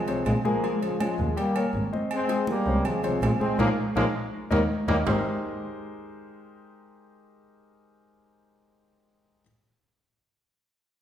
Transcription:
Already playing: F3 G#3
0.08 C3 C5 C#5, high conga, low agogo
0.26 A#1 F3 G#3, high conga, low agogo
0.45 F3 G#3 A#3 G#4 G#5, high conga
0.63 G#3 G#4 G#5, high conga, low agogo
0.81 C#3 F3, high conga, low agogo
1.00 F3 G#3 C#4 C#5 F5, high conga, low agogo
1.19 D#2, high conga
1.36 G3 A#3 G4 G5, high conga, low agogo
1.56 A#3 A#4 C#5, high conga, low agogo
1.74 G#1, high conga
1.92 C4 C5 D#5, high conga
2.11 G#3 C4, high conga, low agogo
2.29 G#3 G#4 G#5, high conga, low agogo
2.47 G3 A#3, high conga
2.66 C#2 C3 C5 C#5, high conga
2.85 F3 G#3, high conga, low conga, low agogo
3.03 C3 C5 C#5, high conga, low conga, low agogo
3.22 A#1 F3 G#3, high conga, low timbale, low agogo
3.40 G#3 C4 G#4 G#5, high conga
3.59 A#1 F3 G#3 A#3 G#4 A#4 C#5, high conga, high timbale
3.96 A#1 F3 G#3 A#3 G#4 A#4 C#5, high conga, high timbale
4.51 D#2 D#3 G3 A#3 A#4 C#5 D#5, high conga, high timbale
4.88 D#2 D#3 G3 A#3 A#4 C#5 D#5, high conga, high timbale
5.06 G#1 G#3 D#4 G4 G#4 A#4 C5, low conga, low timbale

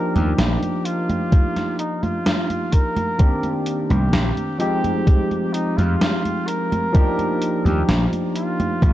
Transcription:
Already playing: F3 A#3 D4 D#4 G4 A#4
0.15 D#2 G4, closed hi-hat, high conga
0.38 A#1, snare, closed hi-hat, high conga
0.63 closed hi-hat, high conga
0.85 F4, closed hi-hat
1.10 closed hi-hat, high conga
1.32 kick, closed hi-hat, high conga
1.56 snare, closed hi-hat, high conga
1.79 D#4, closed hi-hat
2.03 F4, closed hi-hat, high conga
2.26 snare, closed hi-hat, high conga
2.50 closed hi-hat, high conga
2.72 A#4, kick, closed hi-hat
2.96 closed hi-hat, high conga
3.18 D#3 A#3 C4 D4 G4, kick, closed hi-hat, high conga
3.43 closed hi-hat, high conga
3.66 closed hi-hat
3.90 C2 G4, closed hi-hat, high conga
4.13 A#1, snare, closed hi-hat, high conga
4.37 closed hi-hat, high conga
4.58 F3 G#3 C4 D#4 G4, closed hi-hat
4.84 closed hi-hat, high conga
5.07 kick, closed hi-hat, high conga
5.31 closed hi-hat, high conga
5.53 D#4, closed hi-hat
5.77 F2 F4, closed hi-hat, high conga
6.01 snare, closed hi-hat, high conga
6.25 closed hi-hat, high conga
6.47 A#4, closed hi-hat
6.72 closed hi-hat, high conga
6.93 F3 A#3 D4 D#4 G4, kick, closed hi-hat, high conga
7.19 closed hi-hat, high conga
7.42 closed hi-hat
7.65 D#2 G4, closed hi-hat, high conga
7.88 A#1, snare, closed hi-hat, high conga
8.13 closed hi-hat, high conga
8.36 F4, closed hi-hat
8.60 closed hi-hat, high conga
8.82 A#1, kick, closed hi-hat, high conga

